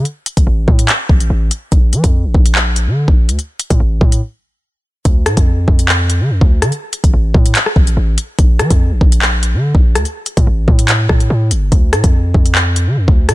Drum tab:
HH |x-xx---xx--x--x-|x-xx---x--x----x|x-xx---x--------|x-xx---x--x----x|
CP |--------x-------|--------x-------|----------------|--------x-------|
SD |----------------|----------------|----------------|--r------------r|
BD |---o--o---o-----|o--o--o------o--|---o--o---------|o--o--o------o--|

HH |x-xx---xx--x--x-|x-xx---x--x----x|x-xx---xx--x--x-|x-xx---x--x----x|
CP |--------x-------|--------x-------|--------x-------|--------x-------|
SD |---------r------|--r------------r|----------r-----|--r------------r|
BD |---o--o---o-----|o--o--o------o--|---o--o---o-----|o--o--o------o--|